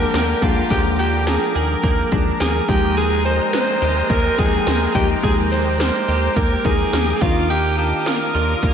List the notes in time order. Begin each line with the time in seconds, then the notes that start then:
Already playing: D3 F3 G#3 A#3 D4 G4 G#4 A#4 G5 A#5 D6
0.14 D#2 A#3, snare, closed hi-hat, tambourine
0.41 D#2 F3 G#3 A#3 D4 F4 G#4, kick, closed hi-hat
0.70 D#2 F3 G#3 A#3 D4 G4 G#4, kick, closed hi-hat
0.99 D4 G4, closed hi-hat
1.27 A#3 G#4, snare, closed hi-hat, tambourine
1.55 D#2 G#4 A#4, closed hi-hat
1.83 D#2 A#3, kick, closed hi-hat
2.11 D#2 F3 G#3 A#3 D4 G#4, kick, closed hi-hat
2.40 D#2 A#3 G#4, snare, closed hi-hat, tambourine
2.68 D#2 C3 D#3 F3 G#3 A#3 C4 D#4 G4 G5 D#6, kick, open hi-hat
2.97 G#3 G#4, closed hi-hat
3.25 D#4 C5, closed hi-hat
3.53 A#3 C5, snare, closed hi-hat, tambourine
3.82 D#2 G4, closed hi-hat
4.10 D#2 A#3 A#4, kick, closed hi-hat
4.38 D#2 F3 G#3 A#3 D#4 G#4 G5, kick, closed hi-hat
4.67 D#2 A#3, snare, closed hi-hat, tambourine
4.94 D#2 F3 G#3 A#3 D#4 G4 D6, kick, closed hi-hat
5.23 D#2 F3 G#3 A#3 D#4 G4 G#4, kick, closed hi-hat
5.52 D#4 C5, closed hi-hat
5.80 A#3 C5, snare, closed hi-hat, tambourine
6.08 D#2 G4, closed hi-hat
6.36 D#2 A#3 A#4, kick, closed hi-hat
6.64 D#2 F3 G#3 A#3 D#4 G#4 A#4, kick, closed hi-hat
6.93 D#2 A#3, snare, closed hi-hat, tambourine
7.21 D#2 D#3 A#3 C4 D4 F4 A#4 F5 D#6, kick, closed hi-hat
7.50 D#3 G4, closed hi-hat
7.78 D4 G4, closed hi-hat
8.06 A#3 A#4, snare, closed hi-hat, tambourine
8.34 D#2 G3 A#3 F4 A#4, closed hi-hat
8.63 D#2 A#3, kick, closed hi-hat